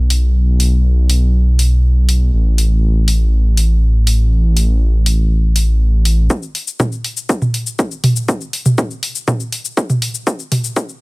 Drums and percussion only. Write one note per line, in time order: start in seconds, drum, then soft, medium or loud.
0.10 open hi-hat loud
0.60 open hi-hat loud
1.10 open hi-hat loud
1.59 open hi-hat loud
2.09 open hi-hat loud
2.58 open hi-hat medium
3.08 open hi-hat medium
3.57 open hi-hat loud
4.07 open hi-hat loud
4.57 open hi-hat loud
5.06 open hi-hat loud
5.56 open hi-hat loud
6.05 open hi-hat loud
6.30 kick loud
6.30 shaker medium
6.43 shaker soft
6.55 open hi-hat loud
6.67 shaker medium
6.80 kick loud
6.80 mid tom medium
6.80 shaker medium
6.92 shaker soft
7.04 open hi-hat loud
7.17 shaker medium
7.29 kick loud
7.29 shaker medium
7.42 mid tom medium
7.42 shaker soft
7.54 open hi-hat loud
7.67 shaker medium
7.79 kick loud
7.79 shaker medium
7.91 shaker soft
8.04 mid tom medium
8.04 open hi-hat loud
8.16 shaker medium
8.28 kick loud
8.28 shaker medium
8.41 shaker soft
8.53 open hi-hat loud
8.66 mid tom medium
8.66 shaker medium
8.78 kick loud
8.78 shaker medium
8.91 shaker soft
9.03 open hi-hat loud
9.15 shaker medium
9.28 kick loud
9.28 mid tom medium
9.28 shaker medium
9.40 shaker soft
9.52 open hi-hat loud
9.65 shaker medium
9.77 kick loud
9.77 shaker medium
9.90 mid tom medium
9.90 shaker soft
10.02 open hi-hat loud
10.15 shaker medium
10.27 kick loud
10.27 shaker medium
10.39 shaker soft
10.52 mid tom medium
10.52 open hi-hat loud
10.64 shaker medium
10.76 kick loud
10.76 shaker medium
10.89 shaker soft